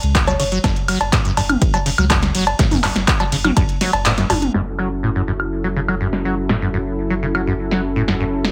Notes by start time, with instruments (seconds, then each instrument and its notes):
0.03 sub bass C#2, closed hi-hat
0.15 kick, clap, closed hi-hat, ride
0.27 acid bass F#3, synth pluck C#5, snare, closed hi-hat, cowbell
0.40 sub bass F#1, acid bass C#3, synth pluck C#5, open hi-hat, ride
0.52 acid bass F#3, closed hi-hat
0.64 sub bass F#1, acid bass F#2, kick, snare, closed hi-hat, ride, cowbell
0.76 closed hi-hat
0.88 acid bass F#3, open hi-hat, ride, high woodblock
1.01 sub bass F#1, closed hi-hat, cowbell
1.13 acid bass A2, kick, clap, closed hi-hat, ride
1.25 acid bass F#2, closed hi-hat
1.37 sub bass F#1, acid bass F#2, open hi-hat, ride, cowbell
1.49 closed hi-hat, mid tom, high woodblock
1.62 sub bass F#1, kick, closed hi-hat, ride
1.74 acid bass F#3, closed hi-hat, cowbell
1.86 acid bass C#3, open hi-hat, ride
1.98 sub bass C#2, acid bass F#3, closed hi-hat, high woodblock
2.10 acid bass F#2, kick, clap, closed hi-hat, ride, cowbell
2.23 snare, closed hi-hat
2.35 sub bass F#1, acid bass F#3, open hi-hat, ride
2.47 closed hi-hat, cowbell
2.59 sub bass F#1, acid bass A2, kick, snare, closed hi-hat, ride
2.71 acid bass F#2, open hi-hat, mid tom
2.83 acid bass F#2, clap, open hi-hat, ride, cowbell, high woodblock
2.96 sub bass F#1, snare, closed hi-hat
3.08 kick, clap, closed hi-hat, ride
3.20 acid bass F#3, closed hi-hat, cowbell
3.32 sub bass F#1, acid bass C#3, open hi-hat, ride
3.44 acid bass F#3, closed hi-hat, mid tom, high woodblock
3.57 sub bass E1, acid bass F#2, kick, closed hi-hat, ride, cowbell
3.69 closed hi-hat
3.81 acid bass F#3, snare, open hi-hat, ride
3.93 sub bass F#1, closed hi-hat, cowbell
4.05 acid bass A2, clap, closed hi-hat, ride
4.18 acid bass F#2, snare, closed hi-hat
4.30 sub bass F#1, acid bass F#2, open hi-hat, high tom, ride, cowbell
4.42 closed hi-hat, mid tom
4.54 sub bass F#1, acid bass F#2, analog synth pad F#3 C#4 E4 A4, snare
4.79 acid bass F#3, high woodblock
5.03 acid bass A2
5.15 acid bass F#2
5.27 acid bass F#2
5.40 high woodblock
5.64 acid bass F#3
5.76 acid bass C#3
5.88 acid bass F#3, high woodblock
6.01 acid bass F#2
6.13 snare
6.25 acid bass F#3
6.49 acid bass A2, snare
6.62 acid bass F#2
6.74 acid bass F#2
7.10 acid bass F#3
7.22 acid bass C#3
7.35 acid bass F#3, high woodblock
7.47 acid bass F#2
7.71 acid bass F#3, snare
7.96 acid bass A2
8.08 acid bass F#2, snare
8.20 acid bass F#2
8.45 snare